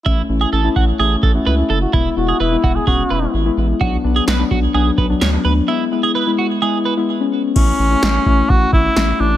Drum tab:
CC |--------|--------|--------|--------|
SD |--------|--------|--o---o-|--------|
BD |o--o-o--|o--oo---|o--o-o--|--------|

CC |x-------|
SD |--o---o-|
BD |o--ooo--|